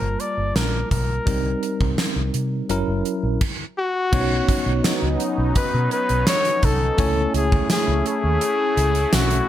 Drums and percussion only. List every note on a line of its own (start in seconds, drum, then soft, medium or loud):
0.20 closed hi-hat medium
0.56 snare loud
0.56 closed hi-hat medium
0.91 kick medium
0.91 closed hi-hat medium
1.27 kick loud
1.27 closed hi-hat medium
1.63 closed hi-hat medium
1.81 kick medium
1.98 snare loud
1.98 closed hi-hat medium
2.34 closed hi-hat medium
2.69 closed hi-hat medium
3.05 closed hi-hat medium
3.41 kick loud
3.41 crash medium
4.13 kick loud
4.13 crash loud
4.49 kick medium
4.49 closed hi-hat medium
4.84 snare loud
4.84 closed hi-hat medium
4.84 tambourine medium
5.20 closed hi-hat medium
5.55 kick loud
5.55 closed hi-hat medium
5.91 closed hi-hat medium
6.09 closed hi-hat medium
6.27 snare loud
6.27 closed hi-hat medium
6.27 tambourine medium
6.45 closed hi-hat medium
6.63 kick medium
6.63 closed hi-hat medium
6.98 kick loud
6.98 closed hi-hat medium
7.34 closed hi-hat medium
7.52 kick medium
7.70 snare loud
7.70 closed hi-hat medium
7.70 tambourine medium
8.06 closed hi-hat medium
8.41 closed hi-hat medium
8.77 closed hi-hat medium
8.95 closed hi-hat medium
9.13 snare loud
9.13 closed hi-hat medium
9.13 tambourine medium
9.30 closed hi-hat medium